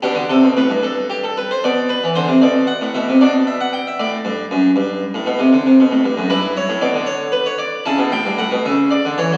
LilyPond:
<<
  \new Staff \with { instrumentName = "Harpsichord" } { \time 12/8 \key g \major \tempo 4. = 77 << { g'8 a'8 b'8 a'8 g'16 a'16 b'16 c''16 d''8 b'8 c''8 d''8 fis''8 e''8 | d''8 e''16 fis''16 g''16 e''16 d''1~ d''16 r16 | \key e \dorian b'8 cis''8 d''8 cis''8 b'16 cis''16 d''8 a''8 g''8 fis''8 e''8 d''8 cis''8 | } \\ { d'1. | d'1. | e'2. e'2. | } >> }
  \new Staff \with { instrumentName = "Harpsichord" } { \clef bass \time 12/8 \key g \major b,16 d16 c16 b,16 a,16 g,4.~ g,16 b,8. e16 d16 c16 b,8. a,16 b,16 c16 | b,4. a,8 g,8 fis,8 g,8. a,16 b,16 c16 d16 c16 b,16 a,16 g,16 fis,16 | \key e \dorian g,8. a,16 b,16 d4.~ d16 cis16 b,16 a,16 g,16 a,16 b,16 cis8. d16 e16 fis16 | }
>>